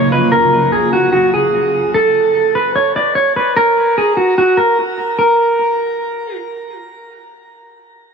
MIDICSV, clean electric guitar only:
0, 0, Header, 1, 2, 480
1, 0, Start_track
1, 0, Key_signature, 6, "major"
1, 0, Tempo, 405405
1, 379, Time_signature, 4, 2, 24, 8
1, 9637, End_track
2, 0, Start_track
2, 0, Title_t, "Clean electric guitar"
2, 0, Program_c, 0, 27
2, 0, Note_on_c, 0, 73, 83
2, 130, Note_off_c, 0, 73, 0
2, 143, Note_on_c, 0, 71, 84
2, 369, Note_off_c, 0, 71, 0
2, 375, Note_on_c, 0, 70, 101
2, 828, Note_off_c, 0, 70, 0
2, 856, Note_on_c, 0, 68, 80
2, 1085, Note_off_c, 0, 68, 0
2, 1099, Note_on_c, 0, 66, 87
2, 1318, Note_off_c, 0, 66, 0
2, 1333, Note_on_c, 0, 66, 85
2, 1564, Note_off_c, 0, 66, 0
2, 1582, Note_on_c, 0, 68, 84
2, 2257, Note_off_c, 0, 68, 0
2, 2302, Note_on_c, 0, 69, 96
2, 2977, Note_off_c, 0, 69, 0
2, 3021, Note_on_c, 0, 71, 79
2, 3248, Note_off_c, 0, 71, 0
2, 3262, Note_on_c, 0, 73, 84
2, 3489, Note_off_c, 0, 73, 0
2, 3505, Note_on_c, 0, 74, 77
2, 3728, Note_off_c, 0, 74, 0
2, 3733, Note_on_c, 0, 73, 76
2, 3964, Note_off_c, 0, 73, 0
2, 3982, Note_on_c, 0, 71, 72
2, 4209, Note_off_c, 0, 71, 0
2, 4221, Note_on_c, 0, 70, 106
2, 4671, Note_off_c, 0, 70, 0
2, 4709, Note_on_c, 0, 68, 77
2, 4931, Note_off_c, 0, 68, 0
2, 4936, Note_on_c, 0, 66, 69
2, 5165, Note_off_c, 0, 66, 0
2, 5185, Note_on_c, 0, 66, 93
2, 5410, Note_off_c, 0, 66, 0
2, 5414, Note_on_c, 0, 70, 83
2, 5644, Note_off_c, 0, 70, 0
2, 6140, Note_on_c, 0, 70, 81
2, 7532, Note_off_c, 0, 70, 0
2, 9637, End_track
0, 0, End_of_file